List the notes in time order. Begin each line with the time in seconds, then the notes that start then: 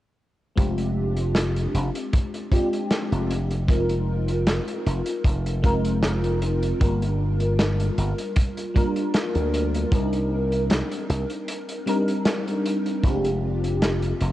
0.56 F1 G#3 C4 D4 F4 G4, kick, closed hi-hat
0.78 closed hi-hat
1.17 closed hi-hat
1.35 snare, closed hi-hat
1.56 closed hi-hat
1.74 F1, closed hi-hat
1.95 closed hi-hat
2.13 kick, closed hi-hat
2.34 closed hi-hat
2.51 G#3 C4 D4 F4 G4, kick, closed hi-hat
2.73 closed hi-hat
2.91 snare, closed hi-hat
3.12 F1, closed hi-hat
3.30 closed hi-hat
3.51 closed hi-hat
3.68 G#3 C4 D#4 F4 A#4, kick, closed hi-hat
3.89 closed hi-hat
4.28 closed hi-hat
4.47 snare, closed hi-hat
4.68 closed hi-hat
4.86 F1, closed hi-hat
5.06 closed hi-hat
5.24 F1, kick, closed hi-hat
5.46 closed hi-hat
5.62 G#3 C4 D#4 F4 A#4, kick, closed hi-hat
5.85 closed hi-hat
6.03 snare, closed hi-hat
6.24 closed hi-hat
6.42 closed hi-hat
6.63 closed hi-hat
6.79 G1 G3 A#3 D4 F4 A#4, kick, closed hi-hat
7.02 closed hi-hat
7.40 closed hi-hat
7.59 snare, closed hi-hat
7.80 closed hi-hat
7.98 G1, closed hi-hat
8.18 closed hi-hat
8.36 kick, closed hi-hat
8.57 closed hi-hat
8.74 G3 A#3 D4 F4 A#4, kick, closed hi-hat
8.96 closed hi-hat
9.14 snare, closed hi-hat
9.35 D2, closed hi-hat
9.54 closed hi-hat
9.74 closed hi-hat
9.91 C2 G3 C4 D4 D#4 A#4, kick, closed hi-hat
10.13 closed hi-hat
10.52 closed hi-hat
10.70 snare, closed hi-hat
10.91 closed hi-hat
11.09 C2, closed hi-hat
11.30 closed hi-hat
11.48 closed hi-hat
11.69 closed hi-hat
11.86 G3 C4 D4 D#4 A#4, closed hi-hat
12.08 closed hi-hat
12.25 snare, closed hi-hat
12.48 closed hi-hat
12.66 closed hi-hat
12.86 closed hi-hat
13.03 F1 G#3 C4 D4 F4 G4, kick, closed hi-hat
13.25 closed hi-hat
13.64 closed hi-hat
13.82 snare, closed hi-hat
14.02 closed hi-hat
14.21 F1, closed hi-hat